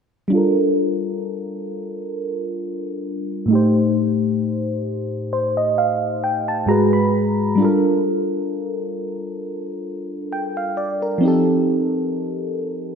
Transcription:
0.28 3.44 G3 medium
0.28 3.46 D4 medium
0.33 3.47 F4 medium
0.33 3.48 A4 medium
0.37 3.49 A#4 medium
3.46 6.63 A2 medium
3.46 6.64 A3 medium
3.51 6.65 D#4 medium
3.51 6.66 G4 medium
3.55 5.32 C5 medium
5.33 5.56 C5 medium
5.57 5.77 D#5 medium
5.78 6.20 F5 medium
6.24 6.46 G5 medium
6.48 6.68 A5 medium
6.66 7.58 G#2 medium
6.66 7.59 G#3 medium
6.66 7.60 F#4 medium
6.66 7.60 G#4 medium
6.66 6.92 A#5 medium
6.71 7.61 B4 medium
6.93 7.56 B5 medium
7.55 11.17 G3 medium
7.55 11.18 D4 medium
7.60 11.20 F4 medium
7.60 10.30 A4 medium
7.65 10.31 A#4 medium
10.32 10.56 G5 medium
10.57 10.77 F5 medium
10.77 11.01 D5 medium
11.02 11.46 A#4 medium
11.18 12.95 F3 medium
11.18 12.95 C4 medium
11.23 12.95 D#4 medium
11.23 12.95 G4 medium
11.28 12.95 A4 medium

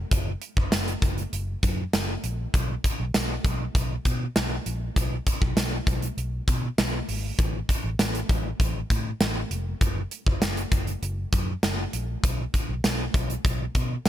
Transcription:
0.11 0.33 F#1 loud
0.11 kick loud
0.11 closed hi-hat medium
0.42 closed hi-hat medium
0.57 0.68 F#1 loud
0.57 kick loud
0.72 0.94 F#1 loud
0.72 snare loud
0.72 closed hi-hat loud
0.72 tambourine medium
0.88 closed hi-hat medium
1.02 1.24 F#1 medium
1.02 kick loud
1.02 closed hi-hat medium
1.18 closed hi-hat medium
1.33 1.54 F#1 loud
1.33 closed hi-hat medium
1.63 1.85 F#2 loud
1.63 kick medium
1.63 closed hi-hat medium
1.93 2.15 F#1 loud
1.93 snare loud
1.93 closed hi-hat medium
1.93 tambourine medium
2.24 2.46 A#1 loud
2.24 closed hi-hat medium
2.54 2.76 B1 loud
2.54 kick loud
2.54 closed hi-hat medium
2.84 kick medium
2.84 closed hi-hat medium
3.00 3.10 B1 medium
3.14 3.36 B1 loud
3.14 snare loud
3.14 closed hi-hat loud
3.14 tambourine medium
3.45 3.66 B1 loud
3.45 kick loud
3.45 closed hi-hat medium
3.75 3.97 B1 loud
3.75 kick loud
3.75 closed hi-hat medium
4.05 4.27 B2 loud
4.05 kick medium
4.05 closed hi-hat medium
4.36 4.58 B1 loud
4.36 snare loud
4.36 closed hi-hat medium
4.36 tambourine medium
4.66 4.88 A#1 medium
4.66 closed hi-hat medium
4.96 5.18 B1 loud
4.96 kick loud
4.96 closed hi-hat medium
5.27 kick medium
5.27 closed hi-hat medium
5.42 5.53 B1 loud
5.42 kick loud
5.57 5.79 B1 loud
5.57 snare loud
5.57 closed hi-hat loud
5.57 tambourine medium
5.87 6.09 B1 loud
5.87 kick loud
5.87 closed hi-hat medium
6.02 closed hi-hat medium
6.17 6.39 B1 loud
6.17 closed hi-hat medium
6.48 6.70 B2 medium
6.48 kick medium
6.48 closed hi-hat medium
6.78 7.00 B1 loud
6.78 snare loud
6.78 closed hi-hat medium
6.78 tambourine medium
7.08 7.30 G#1 loud
7.08 open hi-hat medium
7.39 7.61 A1 loud
7.39 kick loud
7.39 closed hi-hat medium
7.69 kick medium
7.69 closed hi-hat medium
7.84 7.95 A1 loud
7.99 8.21 A1 loud
7.99 snare loud
7.99 closed hi-hat loud
7.99 tambourine medium
8.15 closed hi-hat medium
8.29 8.51 A1 loud
8.29 kick loud
8.29 closed hi-hat medium
8.60 8.82 A1 loud
8.60 kick loud
8.60 closed hi-hat medium
8.90 9.12 A2 medium
8.90 kick medium
8.90 closed hi-hat medium
9.20 9.42 A1 loud
9.20 snare loud
9.20 closed hi-hat medium
9.20 tambourine medium
9.51 9.73 F1 medium
9.51 closed hi-hat medium
9.81 10.03 F#1 loud
9.81 kick loud
9.81 closed hi-hat medium
10.11 closed hi-hat medium
10.27 10.38 F#1 medium
10.27 kick loud
10.42 10.64 F#1 loud
10.42 snare loud
10.42 closed hi-hat loud
10.42 tambourine medium
10.57 closed hi-hat medium
10.72 10.94 F#1 loud
10.72 kick loud
10.72 closed hi-hat medium
10.87 closed hi-hat soft
11.02 11.24 F#1 loud
11.02 closed hi-hat medium
11.33 11.55 F#2 loud
11.33 kick medium
11.33 closed hi-hat medium
11.63 11.85 F#1 loud
11.63 snare loud
11.63 closed hi-hat medium
11.63 tambourine medium
11.93 12.15 A#1 loud
11.93 closed hi-hat medium
12.24 12.45 B1 loud
12.24 kick loud
12.24 closed hi-hat medium
12.54 kick medium
12.54 closed hi-hat medium
12.69 12.80 B1 medium
12.84 13.06 B1 loud
12.84 snare loud
12.84 closed hi-hat loud
12.84 tambourine medium
13.14 13.36 B1 loud
13.14 kick loud
13.14 closed hi-hat medium
13.30 closed hi-hat soft
13.45 13.67 B1 loud
13.45 kick loud
13.45 closed hi-hat medium
13.75 13.97 B2 loud
13.75 kick medium
13.75 closed hi-hat medium
14.05 14.09 B1 medium
14.05 snare loud
14.05 closed hi-hat medium
14.05 tambourine medium

